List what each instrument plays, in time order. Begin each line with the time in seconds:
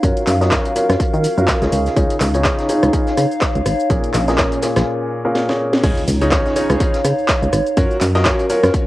Already playing: ambient pad D#4 C#5
0.03 fm bass F#2, grand piano F#3 C#4 F4 F#4 A#4 C#5, ambient pad F5, kick, closed hi-hat, shaker
0.17 closed hi-hat, shaker
0.27 fm bass F#2, ambient pad A#4, clap, closed hi-hat, open hi-hat, shaker
0.41 grand piano F#3 C#4 F4 F#4 A#4 D#5, snare, shaker
0.51 grand piano F#3 C#4 F4 F#4 A#4 C#5, kick, snare, clap, closed hi-hat, shaker
0.65 closed hi-hat, shaker
0.76 grand piano F#3 C#4 F4 F#4 A#4 C#5, closed hi-hat, open hi-hat, shaker
0.89 fm bass F#2, cross-stick, snare, closed hi-hat, shaker
1.00 kick, closed hi-hat, shaker
1.14 fm bass D#3, shaker
1.24 closed hi-hat, open hi-hat, shaker
1.38 fm bass F#2, grand piano F#3 C#4 F4 F#4 A#4 F5, shaker
1.48 kick, snare, clap, closed hi-hat, shaker
1.62 fm bass C#2, grand piano C#3 C#4 D#4 F4 G#4 C#5, snare, closed hi-hat, shaker
1.72 fm bass C#2, ambient pad D#4, closed hi-hat, open hi-hat, shaker
1.86 snare, shaker
1.96 fm bass C#2, grand piano C#3 C#4 D#4 F4 G#4 C#5, kick, closed hi-hat, shaker
2.10 ambient pad C#5, closed hi-hat, shaker
2.20 fm bass C#2, clap, closed hi-hat, open hi-hat, shaker
2.32 grand piano C#3 C#4 D#4 F4 G#4 C#5, ambient pad F5, closed hi-hat, shaker
2.44 grand piano C#3 C#4 D#4 F4 G#4 C#5, kick, snare, clap, closed hi-hat, shaker
2.59 snare, closed hi-hat, shaker
2.69 grand piano C#3 C#4 D#4 F4 G#4 C#5, closed hi-hat, open hi-hat, shaker
2.83 fm bass C#2, cross-stick, closed hi-hat, shaker
2.93 grand piano C#3 C#4 D#4 F4 G#4 F5, kick, closed hi-hat, shaker
3.07 snare, shaker
3.17 fm bass C#3, cross-stick, closed hi-hat, open hi-hat, shaker
3.31 shaker
3.41 kick, snare, clap, closed hi-hat, shaker
3.56 fm bass C#2, closed hi-hat, shaker
3.66 fm bass G#1, cross-stick, closed hi-hat, open hi-hat, shaker
3.80 shaker
3.90 fm bass A#1, grand piano A#2 C#4 F4 G#4 A#4 C#5, ambient pad C#4, kick, closed hi-hat, shaker
4.04 closed hi-hat, shaker
4.13 fm bass A#1, ambient pad A#4, clap, closed hi-hat, open hi-hat, shaker
4.28 grand piano A#2 C#4 F4 G#4 A#4 D#5, snare, closed hi-hat, shaker
4.38 grand piano A#2 C#4 F4 G#4 A#4 C#5, kick, snare, clap, closed hi-hat, shaker
4.52 closed hi-hat, shaker
4.62 grand piano A#2 C#4 F4 G#4 A#4 C#5, snare, closed hi-hat, open hi-hat, shaker
4.76 fm bass A#1, cross-stick, snare, closed hi-hat, shaker
5.25 grand piano A#2 C#4 F4 G#4 A#4 F5
5.35 snare
5.49 grand piano A#2 C#4 F4 G#4 A#4 C#5, snare
5.73 snare
5.84 fm bass C#2, grand piano C#3 C#4 D#4 F4 G#4 C#5, ambient pad D#4, kick, closed hi-hat, crash, impact, shaker
5.94 ambient pad C#5, closed hi-hat, shaker
6.08 fm bass C#2, closed hi-hat, open hi-hat, shaker
6.21 grand piano C#3 C#4 D#4 F4 G#4 C#5, closed hi-hat, shaker
6.32 grand piano C#3 C#4 D#4 F4 G#4 C#5, kick, snare, clap, closed hi-hat, shaker
6.46 ambient pad F5, snare, shaker
6.56 grand piano C#3 C#4 D#4 F4 G#4 C#5, closed hi-hat, open hi-hat, shaker
6.70 fm bass C#2, cross-stick, closed hi-hat, shaker
6.80 grand piano C#3 C#4 D#4 F4 G#4 F5, kick, closed hi-hat, shaker
6.94 snare, closed hi-hat, shaker
7.05 fm bass C#3, cross-stick, closed hi-hat, open hi-hat, shaker
7.18 shaker
7.28 kick, snare, clap, closed hi-hat, shaker
7.42 fm bass C#2, shaker
7.53 fm bass G#1, cross-stick, closed hi-hat, open hi-hat, shaker
7.67 closed hi-hat, shaker
7.77 fm bass F#2, grand piano F#3 C#4 F4 F#4 A#4 C#5, ambient pad C#4, kick, closed hi-hat, shaker
7.91 shaker
7.96 ambient pad A#4
8.01 fm bass F#2, clap, closed hi-hat, open hi-hat, shaker
8.15 grand piano F#3 C#4 F4 F#4 A#4 D#5, snare, closed hi-hat, shaker
8.25 grand piano F#3 C#4 F4 F#4 A#4 C#5, kick, snare, clap, closed hi-hat, shaker
8.39 closed hi-hat, shaker
8.50 grand piano F#3 C#4 F4 F#4 A#4 C#5, closed hi-hat, open hi-hat, shaker
8.63 fm bass F#2, cross-stick, snare, closed hi-hat, shaker
8.74 kick, closed hi-hat, shaker